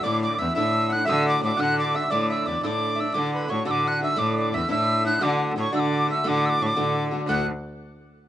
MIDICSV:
0, 0, Header, 1, 6, 480
1, 0, Start_track
1, 0, Key_signature, 2, "major"
1, 0, Tempo, 345622
1, 50, Time_signature, 6, 3, 24, 8
1, 11506, End_track
2, 0, Start_track
2, 0, Title_t, "Tin whistle"
2, 0, Program_c, 0, 75
2, 49, Note_on_c, 0, 86, 113
2, 305, Note_off_c, 0, 86, 0
2, 313, Note_on_c, 0, 86, 96
2, 540, Note_on_c, 0, 88, 96
2, 560, Note_off_c, 0, 86, 0
2, 769, Note_off_c, 0, 88, 0
2, 782, Note_on_c, 0, 88, 125
2, 1285, Note_on_c, 0, 90, 110
2, 1306, Note_off_c, 0, 88, 0
2, 1490, Note_off_c, 0, 90, 0
2, 1499, Note_on_c, 0, 88, 112
2, 1745, Note_off_c, 0, 88, 0
2, 1785, Note_on_c, 0, 86, 83
2, 1984, Note_off_c, 0, 86, 0
2, 2002, Note_on_c, 0, 86, 98
2, 2228, Note_on_c, 0, 90, 110
2, 2248, Note_off_c, 0, 86, 0
2, 2482, Note_off_c, 0, 90, 0
2, 2490, Note_on_c, 0, 86, 95
2, 2717, Note_on_c, 0, 88, 105
2, 2738, Note_off_c, 0, 86, 0
2, 2932, Note_on_c, 0, 86, 100
2, 2953, Note_off_c, 0, 88, 0
2, 3194, Note_off_c, 0, 86, 0
2, 3202, Note_on_c, 0, 88, 82
2, 3434, Note_on_c, 0, 86, 89
2, 3455, Note_off_c, 0, 88, 0
2, 3649, Note_off_c, 0, 86, 0
2, 3657, Note_on_c, 0, 88, 94
2, 3703, Note_on_c, 0, 86, 103
2, 3717, Note_off_c, 0, 88, 0
2, 4170, Note_on_c, 0, 88, 89
2, 4191, Note_off_c, 0, 86, 0
2, 4362, Note_on_c, 0, 86, 91
2, 4383, Note_off_c, 0, 88, 0
2, 4636, Note_off_c, 0, 86, 0
2, 4642, Note_on_c, 0, 83, 76
2, 4863, Note_on_c, 0, 85, 95
2, 4883, Note_off_c, 0, 83, 0
2, 5081, Note_off_c, 0, 85, 0
2, 5090, Note_on_c, 0, 88, 96
2, 5151, Note_on_c, 0, 86, 104
2, 5166, Note_off_c, 0, 88, 0
2, 5383, Note_on_c, 0, 90, 99
2, 5404, Note_off_c, 0, 86, 0
2, 5598, Note_off_c, 0, 90, 0
2, 5607, Note_on_c, 0, 88, 102
2, 5813, Note_on_c, 0, 86, 99
2, 5834, Note_off_c, 0, 88, 0
2, 6081, Note_off_c, 0, 86, 0
2, 6102, Note_on_c, 0, 86, 78
2, 6315, Note_on_c, 0, 88, 101
2, 6336, Note_off_c, 0, 86, 0
2, 6536, Note_off_c, 0, 88, 0
2, 6545, Note_on_c, 0, 88, 100
2, 6998, Note_off_c, 0, 88, 0
2, 7031, Note_on_c, 0, 90, 105
2, 7258, Note_on_c, 0, 86, 90
2, 7279, Note_off_c, 0, 90, 0
2, 7523, Note_off_c, 0, 86, 0
2, 7775, Note_on_c, 0, 85, 91
2, 7971, Note_off_c, 0, 85, 0
2, 7986, Note_on_c, 0, 88, 82
2, 8050, Note_on_c, 0, 86, 89
2, 8064, Note_off_c, 0, 88, 0
2, 8438, Note_off_c, 0, 86, 0
2, 8492, Note_on_c, 0, 88, 97
2, 8731, Note_on_c, 0, 86, 104
2, 8752, Note_off_c, 0, 88, 0
2, 8967, Note_on_c, 0, 88, 95
2, 8981, Note_off_c, 0, 86, 0
2, 9019, Note_on_c, 0, 86, 104
2, 9033, Note_off_c, 0, 88, 0
2, 9203, Note_on_c, 0, 85, 95
2, 9217, Note_off_c, 0, 86, 0
2, 9255, Note_on_c, 0, 86, 104
2, 9269, Note_off_c, 0, 85, 0
2, 9785, Note_off_c, 0, 86, 0
2, 10151, Note_on_c, 0, 90, 80
2, 10391, Note_off_c, 0, 90, 0
2, 11506, End_track
3, 0, Start_track
3, 0, Title_t, "Accordion"
3, 0, Program_c, 1, 21
3, 33, Note_on_c, 1, 74, 90
3, 305, Note_off_c, 1, 74, 0
3, 326, Note_on_c, 1, 74, 99
3, 533, Note_off_c, 1, 74, 0
3, 544, Note_on_c, 1, 76, 79
3, 734, Note_off_c, 1, 76, 0
3, 755, Note_on_c, 1, 76, 112
3, 1236, Note_on_c, 1, 78, 96
3, 1273, Note_off_c, 1, 76, 0
3, 1453, Note_on_c, 1, 76, 108
3, 1460, Note_off_c, 1, 78, 0
3, 1721, Note_off_c, 1, 76, 0
3, 1755, Note_on_c, 1, 74, 97
3, 1961, Note_off_c, 1, 74, 0
3, 1982, Note_on_c, 1, 74, 75
3, 2217, Note_off_c, 1, 74, 0
3, 2245, Note_on_c, 1, 78, 100
3, 2487, Note_on_c, 1, 74, 89
3, 2505, Note_off_c, 1, 78, 0
3, 2716, Note_off_c, 1, 74, 0
3, 2718, Note_on_c, 1, 76, 100
3, 2940, Note_on_c, 1, 74, 87
3, 2945, Note_off_c, 1, 76, 0
3, 3396, Note_off_c, 1, 74, 0
3, 3448, Note_on_c, 1, 74, 83
3, 3648, Note_off_c, 1, 74, 0
3, 3671, Note_on_c, 1, 74, 96
3, 4368, Note_off_c, 1, 74, 0
3, 4389, Note_on_c, 1, 74, 85
3, 4631, Note_off_c, 1, 74, 0
3, 4655, Note_on_c, 1, 71, 82
3, 4873, Note_on_c, 1, 73, 70
3, 4880, Note_off_c, 1, 71, 0
3, 5080, Note_off_c, 1, 73, 0
3, 5109, Note_on_c, 1, 74, 90
3, 5354, Note_on_c, 1, 78, 85
3, 5377, Note_off_c, 1, 74, 0
3, 5567, Note_off_c, 1, 78, 0
3, 5584, Note_on_c, 1, 76, 81
3, 5795, Note_off_c, 1, 76, 0
3, 5809, Note_on_c, 1, 74, 77
3, 6319, Note_off_c, 1, 74, 0
3, 6326, Note_on_c, 1, 76, 74
3, 6527, Note_off_c, 1, 76, 0
3, 6553, Note_on_c, 1, 76, 104
3, 7255, Note_on_c, 1, 74, 81
3, 7283, Note_off_c, 1, 76, 0
3, 7503, Note_off_c, 1, 74, 0
3, 7736, Note_on_c, 1, 73, 82
3, 7945, Note_on_c, 1, 74, 90
3, 7950, Note_off_c, 1, 73, 0
3, 8467, Note_off_c, 1, 74, 0
3, 8473, Note_on_c, 1, 76, 89
3, 8679, Note_off_c, 1, 76, 0
3, 8690, Note_on_c, 1, 74, 77
3, 9848, Note_off_c, 1, 74, 0
3, 10115, Note_on_c, 1, 78, 98
3, 10371, Note_off_c, 1, 78, 0
3, 11506, End_track
4, 0, Start_track
4, 0, Title_t, "Mandolin"
4, 0, Program_c, 2, 25
4, 46, Note_on_c, 2, 74, 83
4, 260, Note_off_c, 2, 74, 0
4, 277, Note_on_c, 2, 74, 77
4, 507, Note_off_c, 2, 74, 0
4, 535, Note_on_c, 2, 76, 105
4, 746, Note_off_c, 2, 76, 0
4, 763, Note_on_c, 2, 76, 96
4, 1227, Note_off_c, 2, 76, 0
4, 1250, Note_on_c, 2, 78, 96
4, 1458, Note_off_c, 2, 78, 0
4, 1464, Note_on_c, 2, 76, 98
4, 1739, Note_on_c, 2, 74, 80
4, 1755, Note_off_c, 2, 76, 0
4, 1948, Note_off_c, 2, 74, 0
4, 1964, Note_on_c, 2, 74, 98
4, 2178, Note_on_c, 2, 78, 107
4, 2185, Note_off_c, 2, 74, 0
4, 2444, Note_off_c, 2, 78, 0
4, 2449, Note_on_c, 2, 74, 73
4, 2674, Note_off_c, 2, 74, 0
4, 2700, Note_on_c, 2, 76, 90
4, 2913, Note_off_c, 2, 76, 0
4, 2917, Note_on_c, 2, 74, 93
4, 3196, Note_on_c, 2, 76, 85
4, 3201, Note_off_c, 2, 74, 0
4, 3408, Note_off_c, 2, 76, 0
4, 3411, Note_on_c, 2, 74, 93
4, 3608, Note_off_c, 2, 74, 0
4, 3625, Note_on_c, 2, 74, 78
4, 4097, Note_off_c, 2, 74, 0
4, 4104, Note_on_c, 2, 76, 73
4, 4334, Note_off_c, 2, 76, 0
4, 4338, Note_on_c, 2, 74, 92
4, 4603, Note_off_c, 2, 74, 0
4, 4634, Note_on_c, 2, 71, 71
4, 4852, Note_off_c, 2, 71, 0
4, 4858, Note_on_c, 2, 73, 83
4, 5075, Note_off_c, 2, 73, 0
4, 5081, Note_on_c, 2, 74, 90
4, 5336, Note_off_c, 2, 74, 0
4, 5391, Note_on_c, 2, 78, 95
4, 5603, Note_off_c, 2, 78, 0
4, 5609, Note_on_c, 2, 76, 74
4, 5808, Note_off_c, 2, 76, 0
4, 5816, Note_on_c, 2, 74, 91
4, 6064, Note_off_c, 2, 74, 0
4, 6084, Note_on_c, 2, 74, 81
4, 6304, Note_on_c, 2, 76, 98
4, 6315, Note_off_c, 2, 74, 0
4, 6515, Note_off_c, 2, 76, 0
4, 6545, Note_on_c, 2, 76, 93
4, 6998, Note_off_c, 2, 76, 0
4, 7011, Note_on_c, 2, 78, 90
4, 7227, Note_off_c, 2, 78, 0
4, 7251, Note_on_c, 2, 74, 78
4, 7501, Note_off_c, 2, 74, 0
4, 7745, Note_on_c, 2, 73, 95
4, 7944, Note_off_c, 2, 73, 0
4, 7950, Note_on_c, 2, 74, 88
4, 8209, Note_off_c, 2, 74, 0
4, 8248, Note_on_c, 2, 74, 69
4, 8418, Note_off_c, 2, 74, 0
4, 8426, Note_on_c, 2, 78, 59
4, 8467, Note_off_c, 2, 78, 0
4, 8472, Note_on_c, 2, 76, 72
4, 8679, Note_off_c, 2, 76, 0
4, 8706, Note_on_c, 2, 74, 70
4, 9856, Note_off_c, 2, 74, 0
4, 10123, Note_on_c, 2, 78, 100
4, 10375, Note_off_c, 2, 78, 0
4, 11506, End_track
5, 0, Start_track
5, 0, Title_t, "Steel-string acoustic guitar"
5, 0, Program_c, 3, 25
5, 53, Note_on_c, 3, 50, 84
5, 55, Note_on_c, 3, 45, 89
5, 66, Note_on_c, 3, 57, 91
5, 70, Note_on_c, 3, 62, 83
5, 79, Note_on_c, 3, 64, 94
5, 541, Note_off_c, 3, 50, 0
5, 543, Note_off_c, 3, 57, 0
5, 546, Note_on_c, 3, 50, 64
5, 548, Note_off_c, 3, 45, 0
5, 548, Note_on_c, 3, 57, 72
5, 560, Note_off_c, 3, 64, 0
5, 562, Note_off_c, 3, 62, 0
5, 567, Note_on_c, 3, 62, 71
5, 578, Note_on_c, 3, 64, 60
5, 758, Note_off_c, 3, 64, 0
5, 767, Note_off_c, 3, 62, 0
5, 772, Note_off_c, 3, 50, 0
5, 773, Note_off_c, 3, 57, 0
5, 774, Note_on_c, 3, 64, 69
5, 784, Note_on_c, 3, 62, 82
5, 790, Note_on_c, 3, 57, 75
5, 795, Note_on_c, 3, 45, 62
5, 799, Note_on_c, 3, 50, 79
5, 1249, Note_off_c, 3, 64, 0
5, 1266, Note_on_c, 3, 64, 56
5, 1278, Note_off_c, 3, 45, 0
5, 1278, Note_off_c, 3, 62, 0
5, 1283, Note_on_c, 3, 62, 49
5, 1289, Note_off_c, 3, 57, 0
5, 1295, Note_on_c, 3, 57, 47
5, 1308, Note_off_c, 3, 50, 0
5, 1476, Note_on_c, 3, 38, 78
5, 1478, Note_off_c, 3, 57, 0
5, 1479, Note_on_c, 3, 45, 82
5, 1481, Note_off_c, 3, 62, 0
5, 1488, Note_on_c, 3, 50, 85
5, 1491, Note_off_c, 3, 64, 0
5, 1494, Note_on_c, 3, 57, 99
5, 1497, Note_on_c, 3, 62, 104
5, 1497, Note_on_c, 3, 66, 99
5, 1976, Note_off_c, 3, 50, 0
5, 1979, Note_off_c, 3, 38, 0
5, 1980, Note_off_c, 3, 45, 0
5, 1981, Note_on_c, 3, 50, 62
5, 1985, Note_off_c, 3, 57, 0
5, 1989, Note_off_c, 3, 66, 0
5, 1990, Note_on_c, 3, 57, 64
5, 1993, Note_off_c, 3, 62, 0
5, 1999, Note_on_c, 3, 62, 72
5, 2013, Note_on_c, 3, 66, 59
5, 2173, Note_off_c, 3, 66, 0
5, 2185, Note_off_c, 3, 62, 0
5, 2190, Note_on_c, 3, 66, 82
5, 2191, Note_off_c, 3, 50, 0
5, 2193, Note_off_c, 3, 57, 0
5, 2201, Note_on_c, 3, 62, 77
5, 2207, Note_on_c, 3, 45, 65
5, 2207, Note_on_c, 3, 50, 71
5, 2210, Note_on_c, 3, 57, 70
5, 2212, Note_on_c, 3, 38, 60
5, 2682, Note_off_c, 3, 66, 0
5, 2699, Note_on_c, 3, 66, 49
5, 2704, Note_off_c, 3, 45, 0
5, 2706, Note_off_c, 3, 38, 0
5, 2710, Note_off_c, 3, 62, 0
5, 2716, Note_off_c, 3, 57, 0
5, 2716, Note_on_c, 3, 62, 43
5, 2722, Note_on_c, 3, 57, 51
5, 2728, Note_off_c, 3, 50, 0
5, 2733, Note_on_c, 3, 50, 39
5, 2918, Note_off_c, 3, 50, 0
5, 2924, Note_off_c, 3, 57, 0
5, 2927, Note_off_c, 3, 62, 0
5, 2928, Note_off_c, 3, 66, 0
5, 2933, Note_on_c, 3, 45, 82
5, 2934, Note_on_c, 3, 50, 93
5, 2941, Note_on_c, 3, 57, 86
5, 2944, Note_on_c, 3, 62, 86
5, 2947, Note_on_c, 3, 64, 94
5, 3421, Note_off_c, 3, 50, 0
5, 3426, Note_on_c, 3, 50, 54
5, 3427, Note_off_c, 3, 45, 0
5, 3434, Note_off_c, 3, 64, 0
5, 3435, Note_off_c, 3, 57, 0
5, 3440, Note_on_c, 3, 57, 62
5, 3443, Note_off_c, 3, 62, 0
5, 3449, Note_on_c, 3, 62, 63
5, 3458, Note_on_c, 3, 64, 65
5, 3640, Note_off_c, 3, 64, 0
5, 3647, Note_off_c, 3, 62, 0
5, 3652, Note_off_c, 3, 50, 0
5, 3657, Note_on_c, 3, 64, 80
5, 3659, Note_off_c, 3, 57, 0
5, 3664, Note_on_c, 3, 62, 68
5, 3670, Note_on_c, 3, 50, 70
5, 3675, Note_on_c, 3, 57, 74
5, 3683, Note_on_c, 3, 45, 62
5, 4136, Note_off_c, 3, 64, 0
5, 4152, Note_on_c, 3, 64, 46
5, 4162, Note_off_c, 3, 45, 0
5, 4168, Note_off_c, 3, 62, 0
5, 4174, Note_on_c, 3, 62, 44
5, 4178, Note_off_c, 3, 57, 0
5, 4184, Note_on_c, 3, 57, 40
5, 4194, Note_off_c, 3, 50, 0
5, 4360, Note_off_c, 3, 62, 0
5, 4363, Note_off_c, 3, 57, 0
5, 4364, Note_on_c, 3, 38, 87
5, 4365, Note_on_c, 3, 45, 85
5, 4370, Note_on_c, 3, 50, 72
5, 4374, Note_off_c, 3, 64, 0
5, 4377, Note_on_c, 3, 62, 75
5, 4379, Note_on_c, 3, 57, 86
5, 4380, Note_on_c, 3, 66, 83
5, 4831, Note_off_c, 3, 50, 0
5, 4837, Note_on_c, 3, 50, 61
5, 4841, Note_off_c, 3, 57, 0
5, 4846, Note_on_c, 3, 57, 70
5, 4855, Note_off_c, 3, 66, 0
5, 4857, Note_off_c, 3, 62, 0
5, 4862, Note_off_c, 3, 38, 0
5, 4863, Note_off_c, 3, 45, 0
5, 4863, Note_on_c, 3, 62, 68
5, 4872, Note_on_c, 3, 66, 67
5, 5054, Note_off_c, 3, 66, 0
5, 5057, Note_off_c, 3, 57, 0
5, 5059, Note_off_c, 3, 50, 0
5, 5062, Note_off_c, 3, 62, 0
5, 5071, Note_on_c, 3, 66, 69
5, 5074, Note_on_c, 3, 57, 80
5, 5076, Note_on_c, 3, 50, 75
5, 5078, Note_on_c, 3, 62, 63
5, 5093, Note_on_c, 3, 45, 71
5, 5096, Note_on_c, 3, 38, 70
5, 5547, Note_off_c, 3, 66, 0
5, 5564, Note_off_c, 3, 62, 0
5, 5564, Note_on_c, 3, 66, 47
5, 5569, Note_on_c, 3, 62, 45
5, 5579, Note_off_c, 3, 57, 0
5, 5585, Note_on_c, 3, 57, 47
5, 5587, Note_off_c, 3, 45, 0
5, 5588, Note_off_c, 3, 38, 0
5, 5592, Note_off_c, 3, 50, 0
5, 5597, Note_on_c, 3, 50, 42
5, 5766, Note_off_c, 3, 50, 0
5, 5769, Note_off_c, 3, 57, 0
5, 5773, Note_off_c, 3, 62, 0
5, 5773, Note_on_c, 3, 45, 77
5, 5783, Note_on_c, 3, 50, 94
5, 5785, Note_on_c, 3, 57, 82
5, 5787, Note_off_c, 3, 66, 0
5, 5790, Note_on_c, 3, 62, 99
5, 5793, Note_on_c, 3, 64, 88
5, 6271, Note_off_c, 3, 50, 0
5, 6277, Note_on_c, 3, 50, 61
5, 6286, Note_off_c, 3, 45, 0
5, 6289, Note_off_c, 3, 57, 0
5, 6294, Note_on_c, 3, 57, 62
5, 6296, Note_off_c, 3, 62, 0
5, 6296, Note_off_c, 3, 64, 0
5, 6302, Note_on_c, 3, 62, 65
5, 6317, Note_on_c, 3, 64, 72
5, 6494, Note_off_c, 3, 62, 0
5, 6494, Note_off_c, 3, 64, 0
5, 6502, Note_off_c, 3, 57, 0
5, 6510, Note_off_c, 3, 50, 0
5, 6510, Note_on_c, 3, 64, 84
5, 6511, Note_on_c, 3, 62, 82
5, 6518, Note_on_c, 3, 57, 73
5, 6526, Note_on_c, 3, 45, 61
5, 6526, Note_on_c, 3, 50, 75
5, 6986, Note_off_c, 3, 64, 0
5, 7002, Note_on_c, 3, 64, 49
5, 7006, Note_off_c, 3, 62, 0
5, 7012, Note_on_c, 3, 62, 48
5, 7023, Note_off_c, 3, 45, 0
5, 7029, Note_off_c, 3, 57, 0
5, 7035, Note_on_c, 3, 57, 45
5, 7044, Note_off_c, 3, 50, 0
5, 7218, Note_off_c, 3, 57, 0
5, 7228, Note_on_c, 3, 38, 83
5, 7228, Note_on_c, 3, 45, 85
5, 7229, Note_off_c, 3, 62, 0
5, 7235, Note_on_c, 3, 57, 79
5, 7237, Note_on_c, 3, 50, 84
5, 7239, Note_off_c, 3, 64, 0
5, 7245, Note_on_c, 3, 66, 88
5, 7246, Note_on_c, 3, 62, 94
5, 7714, Note_off_c, 3, 50, 0
5, 7720, Note_on_c, 3, 50, 64
5, 7724, Note_off_c, 3, 57, 0
5, 7729, Note_on_c, 3, 57, 63
5, 7734, Note_off_c, 3, 38, 0
5, 7734, Note_off_c, 3, 45, 0
5, 7736, Note_off_c, 3, 62, 0
5, 7742, Note_on_c, 3, 62, 68
5, 7750, Note_off_c, 3, 66, 0
5, 7755, Note_on_c, 3, 66, 69
5, 7935, Note_off_c, 3, 66, 0
5, 7939, Note_off_c, 3, 62, 0
5, 7946, Note_off_c, 3, 50, 0
5, 7950, Note_off_c, 3, 57, 0
5, 7952, Note_on_c, 3, 66, 67
5, 7955, Note_on_c, 3, 62, 82
5, 7963, Note_on_c, 3, 50, 70
5, 7967, Note_on_c, 3, 57, 76
5, 7973, Note_on_c, 3, 45, 70
5, 7975, Note_on_c, 3, 38, 61
5, 8441, Note_off_c, 3, 66, 0
5, 8446, Note_on_c, 3, 66, 57
5, 8459, Note_off_c, 3, 57, 0
5, 8460, Note_off_c, 3, 62, 0
5, 8464, Note_on_c, 3, 57, 47
5, 8466, Note_off_c, 3, 45, 0
5, 8466, Note_on_c, 3, 62, 53
5, 8467, Note_off_c, 3, 38, 0
5, 8481, Note_off_c, 3, 50, 0
5, 8487, Note_on_c, 3, 50, 49
5, 8651, Note_off_c, 3, 57, 0
5, 8654, Note_off_c, 3, 50, 0
5, 8658, Note_on_c, 3, 38, 81
5, 8661, Note_off_c, 3, 62, 0
5, 8664, Note_off_c, 3, 66, 0
5, 8667, Note_on_c, 3, 57, 85
5, 8668, Note_on_c, 3, 45, 91
5, 8671, Note_on_c, 3, 50, 90
5, 8678, Note_on_c, 3, 62, 93
5, 8681, Note_on_c, 3, 66, 97
5, 9165, Note_off_c, 3, 50, 0
5, 9168, Note_off_c, 3, 38, 0
5, 9170, Note_on_c, 3, 50, 57
5, 9171, Note_off_c, 3, 57, 0
5, 9173, Note_off_c, 3, 45, 0
5, 9177, Note_on_c, 3, 57, 52
5, 9185, Note_off_c, 3, 62, 0
5, 9190, Note_on_c, 3, 62, 70
5, 9192, Note_off_c, 3, 66, 0
5, 9198, Note_on_c, 3, 66, 69
5, 9373, Note_off_c, 3, 66, 0
5, 9379, Note_off_c, 3, 62, 0
5, 9380, Note_off_c, 3, 50, 0
5, 9386, Note_off_c, 3, 57, 0
5, 9390, Note_on_c, 3, 66, 73
5, 9396, Note_on_c, 3, 62, 71
5, 9397, Note_on_c, 3, 50, 75
5, 9403, Note_on_c, 3, 57, 71
5, 9405, Note_on_c, 3, 45, 74
5, 9410, Note_on_c, 3, 38, 71
5, 9871, Note_off_c, 3, 66, 0
5, 9877, Note_on_c, 3, 66, 62
5, 9885, Note_off_c, 3, 62, 0
5, 9891, Note_on_c, 3, 62, 59
5, 9900, Note_off_c, 3, 57, 0
5, 9901, Note_off_c, 3, 45, 0
5, 9901, Note_off_c, 3, 50, 0
5, 9904, Note_off_c, 3, 38, 0
5, 9906, Note_on_c, 3, 57, 45
5, 9907, Note_on_c, 3, 50, 46
5, 10099, Note_on_c, 3, 38, 83
5, 10105, Note_off_c, 3, 57, 0
5, 10107, Note_off_c, 3, 50, 0
5, 10110, Note_on_c, 3, 45, 84
5, 10116, Note_off_c, 3, 66, 0
5, 10117, Note_off_c, 3, 62, 0
5, 10122, Note_on_c, 3, 57, 99
5, 10124, Note_on_c, 3, 50, 95
5, 10134, Note_on_c, 3, 62, 98
5, 10137, Note_on_c, 3, 66, 92
5, 10329, Note_off_c, 3, 38, 0
5, 10334, Note_off_c, 3, 45, 0
5, 10340, Note_off_c, 3, 57, 0
5, 10341, Note_off_c, 3, 50, 0
5, 10346, Note_off_c, 3, 62, 0
5, 10348, Note_off_c, 3, 66, 0
5, 11506, End_track
6, 0, Start_track
6, 0, Title_t, "Cello"
6, 0, Program_c, 4, 42
6, 57, Note_on_c, 4, 45, 111
6, 467, Note_off_c, 4, 45, 0
6, 571, Note_on_c, 4, 40, 108
6, 749, Note_off_c, 4, 40, 0
6, 796, Note_on_c, 4, 45, 106
6, 1387, Note_off_c, 4, 45, 0
6, 1512, Note_on_c, 4, 50, 123
6, 1916, Note_off_c, 4, 50, 0
6, 1999, Note_on_c, 4, 45, 93
6, 2182, Note_off_c, 4, 45, 0
6, 2216, Note_on_c, 4, 50, 99
6, 2815, Note_off_c, 4, 50, 0
6, 2932, Note_on_c, 4, 45, 106
6, 3344, Note_off_c, 4, 45, 0
6, 3439, Note_on_c, 4, 40, 86
6, 3622, Note_off_c, 4, 40, 0
6, 3646, Note_on_c, 4, 45, 84
6, 4249, Note_off_c, 4, 45, 0
6, 4370, Note_on_c, 4, 50, 99
6, 4783, Note_off_c, 4, 50, 0
6, 4884, Note_on_c, 4, 45, 88
6, 5065, Note_off_c, 4, 45, 0
6, 5113, Note_on_c, 4, 50, 91
6, 5704, Note_off_c, 4, 50, 0
6, 5812, Note_on_c, 4, 45, 104
6, 6224, Note_off_c, 4, 45, 0
6, 6317, Note_on_c, 4, 40, 95
6, 6501, Note_off_c, 4, 40, 0
6, 6544, Note_on_c, 4, 45, 102
6, 7139, Note_off_c, 4, 45, 0
6, 7243, Note_on_c, 4, 50, 120
6, 7659, Note_off_c, 4, 50, 0
6, 7746, Note_on_c, 4, 45, 93
6, 7934, Note_off_c, 4, 45, 0
6, 7971, Note_on_c, 4, 50, 104
6, 8571, Note_off_c, 4, 50, 0
6, 8702, Note_on_c, 4, 50, 111
6, 9109, Note_off_c, 4, 50, 0
6, 9191, Note_on_c, 4, 45, 101
6, 9376, Note_off_c, 4, 45, 0
6, 9409, Note_on_c, 4, 50, 101
6, 10010, Note_off_c, 4, 50, 0
6, 10132, Note_on_c, 4, 38, 101
6, 10381, Note_off_c, 4, 38, 0
6, 11506, End_track
0, 0, End_of_file